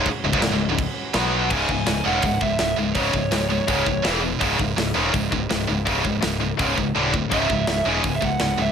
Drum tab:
CC |x---x---x---x---|x---------------|----------------|----------------|
HH |----------------|----o---o---o---|o---o---o---o---|o---o---o---o---|
SD |----o-------o---|----o-------o---|----o-------o---|----o-------o---|
T1 |----------------|----------------|----------------|----------------|
BD |o--o----o-------|o-o-----o-o-----|o-o-----o-o-----|o-o-----o-o-----|

CC |----------------|----------------|
HH |o---o---o-------|o---o---o---o---|
SD |----o-----------|----o-------o---|
T1 |------------o---|----------------|
BD |o-o-----o-o---o-|o-o-----o-o-----|